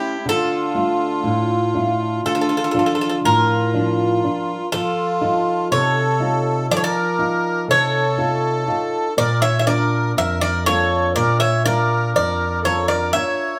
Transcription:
0.00 0.16 A3 soft
0.00 0.16 C#4 soft
0.00 0.16 E4 soft
0.00 0.25 E4 medium
0.00 0.26 G4 medium
0.26 1.22 D3 medium
0.26 2.21 F4 medium
0.26 2.25 A4 medium
0.74 1.54 A3 soft
0.74 1.55 D4 soft
0.74 1.55 F4 medium
1.24 2.21 A2 medium
1.74 2.54 A3 medium
1.74 2.54 D4 soft
1.74 2.54 F4 soft
2.24 3.20 D3 medium
2.24 3.20 F4 medium
2.24 2.32 A4 medium
2.35 2.40 A4 medium
2.41 2.47 A4 medium
2.49 2.55 A4 medium
2.57 2.63 A4 medium
2.64 2.70 A4 medium
2.71 3.53 F3 medium
2.71 3.53 D4 soft
2.71 3.54 F4 medium
2.71 2.77 A4 medium
2.79 2.85 A4 soft
2.86 2.92 A4 medium
2.95 3.00 A4 medium
3.01 3.07 A4 medium
3.09 3.15 A4 soft
3.24 4.20 A2 medium
3.24 4.69 F4 medium
3.24 4.69 A#4 medium
3.74 4.52 F3 soft
3.74 4.23 D4 soft
3.74 4.23 F4 medium
4.24 4.63 D4 soft
4.24 4.63 F4 medium
4.72 5.69 F3 medium
4.72 5.68 F4 medium
4.72 5.71 A4 medium
5.21 6.00 D#4 medium
5.21 6.00 F4 soft
5.21 6.01 A4 medium
5.71 6.67 C3 medium
5.71 6.67 A4 medium
5.71 6.71 C#5 medium
6.20 6.99 D#4 medium
6.20 6.99 F4 soft
6.71 7.66 F3 medium
6.71 6.76 A4 medium
6.71 6.76 D5 medium
6.77 6.84 A4 medium
6.77 6.83 C#5 medium
6.84 7.65 A#4 medium
6.84 7.65 D5 medium
7.19 7.98 D#4 medium
7.19 7.99 F4 soft
7.68 8.64 C3 medium
7.68 9.13 A4 medium
7.68 9.14 C#5 medium
8.17 8.67 D#4 soft
8.17 8.66 F4 soft
8.17 8.67 A4 medium
8.68 9.07 D#4 soft
8.68 9.07 F4 soft
8.68 9.08 A4 medium
9.17 10.13 A#2 medium
9.17 9.40 A#4 medium
9.17 9.41 D5 loud
9.42 9.58 C#5 medium
9.42 9.58 E5 loud
9.59 9.66 C#5 medium
9.59 9.67 E5 medium
9.66 10.46 D4 soft
9.66 10.46 F4 soft
9.66 10.12 A#4 medium
9.66 10.46 A#4 medium
9.66 10.18 D5 medium
10.16 11.13 F2 medium
10.16 10.39 A#4 medium
10.16 10.41 E5 medium
10.40 10.64 A#4 medium
10.40 10.66 D5 loud
10.65 11.46 A#3 medium
10.65 11.45 D4 soft
10.65 11.46 F4 soft
10.65 11.11 A4 medium
10.65 11.15 C#5 loud
11.14 12.12 A#2 medium
11.14 11.38 A#4 medium
11.14 11.38 D5 medium
11.40 11.63 C#5 medium
11.40 11.63 E5 loud
11.64 12.44 D4 soft
11.64 12.45 F4 soft
11.64 12.10 A#4 medium
11.64 12.45 A#4 medium
11.64 12.15 D5 loud
12.13 13.11 F2 medium
12.13 12.60 A#4 medium
12.13 12.61 D5 medium
12.62 13.13 D4 medium
12.62 13.14 F4 soft
12.62 12.86 A4 medium
12.62 13.14 A#4 medium
12.62 12.88 C#5 medium
12.87 13.11 A#4 medium
12.87 13.11 D5 medium
13.13 13.54 D4 soft
13.13 13.54 F4 soft
13.13 13.54 A#4 medium
13.13 13.59 C#5 medium
13.13 13.59 E5 loud

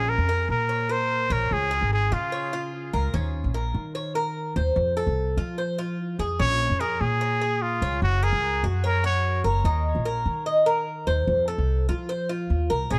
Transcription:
0.00 0.17 A#1 medium
0.00 0.28 C#4 medium
0.00 0.11 G#4 loud
0.09 0.49 A#4 loud
0.18 0.47 F2 medium
0.29 0.68 A#4 medium
0.49 1.26 A#2 medium
0.49 0.93 A#4 medium
0.69 0.89 C#5 medium
0.89 1.29 A#4 medium
0.89 1.34 C5 loud
1.30 1.50 A#1 medium
1.30 1.54 A#4 medium
1.30 1.70 C#5 medium
1.51 1.80 C#2 medium
1.51 1.92 G#4 loud
1.71 2.11 G#4 medium
1.81 2.10 G#1 medium
1.93 2.15 G#4 medium
2.12 2.89 C#3 medium
2.12 2.32 F4 medium
2.12 2.74 F4 medium
2.32 2.52 C#5 medium
2.53 2.92 F4 medium
2.93 3.13 C#2 medium
2.93 3.13 A#4 medium
3.14 3.43 D#2 medium
3.14 3.53 C#4 medium
3.44 3.73 A#1 medium
3.54 3.94 A#4 medium
3.74 4.52 D#3 medium
3.95 4.15 C#5 medium
4.15 4.55 A#4 medium
4.56 4.75 D#2 medium
4.56 4.96 C5 medium
4.76 5.05 F2 medium
4.97 5.36 A4 medium
5.07 5.36 C2 medium
5.37 6.15 F3 medium
5.37 5.57 F4 medium
5.58 5.78 C5 medium
5.78 6.18 F4 medium
6.19 6.38 F2 medium
6.19 6.39 G#4 medium
6.40 6.69 A#1 loud
6.40 6.79 C#4 medium
6.40 6.82 C#5 loud
6.70 6.99 F2 medium
6.80 7.20 G#4 medium
6.80 7.02 A#4 loud
7.01 7.78 A#2 medium
7.01 7.64 G#4 medium
7.21 7.41 C#5 medium
7.41 7.81 G#4 medium
7.62 8.02 F4 medium
7.82 8.01 C#2 medium
7.82 8.21 C#5 medium
8.02 8.31 F#1 medium
8.02 8.25 F#4 loud
8.23 8.64 G#4 loud
8.23 8.62 A#4 medium
8.32 8.62 C#2 medium
8.63 9.41 F#2 medium
8.63 8.83 F#4 medium
8.84 9.03 A#4 medium
8.84 9.03 C#5 medium
9.04 9.43 F#4 medium
9.04 9.43 C#5 medium
9.44 9.64 F#1 medium
9.44 9.64 A#4 medium
9.64 9.94 D#2 medium
9.64 10.04 D#4 medium
9.95 10.24 A#1 medium
10.05 10.45 A#4 medium
10.26 11.03 D#3 medium
10.46 10.66 D#5 medium
10.66 11.06 A#4 medium
11.07 11.27 D#2 medium
11.07 11.47 C5 medium
11.27 11.57 F2 loud
11.48 11.87 A4 medium
11.58 11.87 C2 medium
11.89 12.47 F3 medium
11.89 12.08 F4 medium
12.09 12.29 C5 medium
12.29 12.69 F4 medium
12.50 12.68 D#2 medium
12.70 12.89 C2 medium
12.70 12.90 A#4 medium
12.91 12.99 A#1 medium
12.91 12.99 C#4 medium
12.91 12.99 G#4 medium

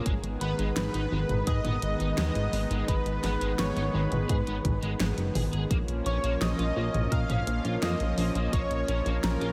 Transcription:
0.06 0.19 G#1 loud
0.06 5.67 D#3 medium
0.06 0.11 G#3 medium
0.06 5.67 G#3 medium
0.06 5.67 B3 medium
0.06 kick loud
0.06 closed hi-hat loud
0.23 0.36 G#1 medium
0.23 closed hi-hat soft
0.41 0.54 G#1 medium
0.41 0.50 B3 loud
0.41 0.55 B4 medium
0.41 0.55 B5 medium
0.41 closed hi-hat medium
0.59 0.72 G#1 medium
0.59 0.68 G#3 medium
0.59 closed hi-hat soft
0.76 0.90 G#1 loud
0.76 1.49 B4 loud
0.76 1.49 B5 medium
0.76 snare loud
0.76 closed hi-hat loud
0.94 1.07 G#1 medium
0.94 1.00 D#4 medium
0.94 closed hi-hat soft
1.12 1.25 G#1 loud
1.12 1.17 G#3 medium
1.29 1.42 G#1 medium
1.29 closed hi-hat soft
1.29 mid tom medium
1.47 1.60 G#2 loud
1.47 1.52 G#4 medium
1.47 2.17 D#5 loud
1.47 2.17 D#6 loud
1.47 kick loud
1.47 closed hi-hat medium
1.65 1.78 G#1 medium
1.65 1.74 B3 medium
1.65 closed hi-hat soft
1.65 mid tom medium
1.82 1.95 G#1 loud
1.82 closed hi-hat medium
2.00 2.13 G#1 medium
2.00 2.09 D#4 medium
2.00 closed hi-hat soft
2.18 2.31 D#2 loud
2.18 2.31 G#3 medium
2.18 2.91 D#5 loud
2.18 2.91 D#6 loud
2.18 snare loud
2.18 closed hi-hat loud
2.35 2.48 G#1 medium
2.35 closed hi-hat soft
2.53 2.66 G#1 loud
2.53 2.58 G#3 medium
2.53 open hi-hat medium
2.70 2.84 G#1 medium
2.70 2.84 G#3 medium
2.70 closed hi-hat soft
2.88 3.01 G#1 loud
2.88 2.94 G#3 medium
2.88 3.61 B4 loud
2.88 3.61 B5 medium
2.88 kick loud
2.88 closed hi-hat medium
3.06 3.19 G#1 medium
3.06 closed hi-hat soft
3.24 3.37 G#1 medium
3.24 3.33 B3 loud
3.24 snare medium
3.24 closed hi-hat medium
3.41 3.54 G#1 medium
3.41 3.50 G#3 medium
3.41 closed hi-hat soft
3.59 3.72 G#1 loud
3.59 3.95 C#5 loud
3.59 3.95 C#6 medium
3.59 snare loud
3.59 closed hi-hat medium
3.76 3.89 G#1 medium
3.76 3.82 D#4 medium
3.76 closed hi-hat soft
3.94 4.07 G#1 loud
3.94 4.00 G#3 medium
3.94 4.96 B4 medium
3.94 4.96 B5 medium
4.12 4.25 G#1 medium
4.12 closed hi-hat soft
4.12 mid tom medium
4.29 4.42 G#2 loud
4.29 4.35 G#4 medium
4.29 kick loud
4.29 closed hi-hat medium
4.47 4.60 G#1 medium
4.47 4.56 B3 medium
4.47 closed hi-hat soft
4.65 4.78 G#1 medium
4.65 kick loud
4.65 closed hi-hat medium
4.65 mid tom medium
4.82 4.95 G#1 medium
4.82 4.91 G#3 medium
4.82 closed hi-hat soft
5.00 5.13 G#1 loud
5.00 5.05 G#3 medium
5.00 snare loud
5.00 closed hi-hat medium
5.18 5.31 F#1 medium
5.18 closed hi-hat soft
5.35 5.48 G#1 loud
5.35 5.41 G#4 medium
5.35 mid tom medium
5.35 open hi-hat medium
5.53 5.66 G#1 medium
5.53 5.62 G#4 medium
5.53 closed hi-hat soft
5.70 5.84 A#1 loud
5.70 9.52 F3 medium
5.70 5.76 A#3 medium
5.70 9.52 A#3 medium
5.70 9.52 C#4 medium
5.70 kick loud
5.70 closed hi-hat medium
5.88 6.01 A#1 medium
5.88 closed hi-hat soft
6.06 6.19 A#1 loud
6.06 6.15 C#4 loud
6.06 6.42 C#5 loud
6.06 6.42 C#6 loud
6.06 closed hi-hat medium
6.23 6.37 A#1 medium
6.23 6.32 A#3 medium
6.23 closed hi-hat soft
6.41 6.54 A#1 loud
6.41 7.14 D#5 loud
6.41 7.14 D#6 loud
6.41 snare loud
6.41 closed hi-hat medium
6.59 6.72 A#1 medium
6.59 6.64 F4 medium
6.59 closed hi-hat soft
6.76 6.89 A#1 loud
6.76 6.82 A#3 medium
6.94 7.07 A#1 medium
6.94 closed hi-hat soft
6.94 mid tom medium
7.12 7.25 A#2 loud
7.12 7.17 A#4 medium
7.12 7.85 F5 loud
7.12 7.85 F6 loud
7.12 kick loud
7.12 closed hi-hat medium
7.30 7.43 A#1 medium
7.30 7.38 C#4 medium
7.30 closed hi-hat soft
7.30 mid tom loud
7.47 7.60 A#1 loud
7.47 closed hi-hat medium
7.65 7.78 A#1 medium
7.65 7.74 F4 medium
7.65 closed hi-hat soft
7.82 7.95 F2 loud
7.82 7.96 A#3 medium
7.82 8.55 D#5 loud
7.82 8.55 D#6 loud
7.82 snare loud
7.82 closed hi-hat medium
8.00 8.13 A#1 medium
8.00 closed hi-hat soft
8.18 8.31 A#1 loud
8.18 8.23 A#3 medium
8.18 open hi-hat medium
8.35 8.48 A#1 medium
8.35 8.49 A#3 medium
8.35 closed hi-hat soft
8.53 8.66 A#1 loud
8.53 8.58 A#3 medium
8.53 9.26 C#5 loud
8.53 9.26 C#6 loud
8.53 kick loud
8.53 closed hi-hat medium
8.71 8.84 A#1 medium
8.71 closed hi-hat soft
8.88 9.01 A#1 medium
8.88 8.97 C#4 loud
8.88 closed hi-hat medium
9.06 9.19 A#1 medium
9.06 9.15 A#3 medium
9.06 closed hi-hat soft
9.23 9.37 A#1 loud
9.23 9.52 A#4 medium
9.23 9.52 A#5 medium
9.23 snare loud
9.23 closed hi-hat medium
9.41 9.52 A#1 medium
9.41 9.47 F4 medium
9.41 closed hi-hat soft

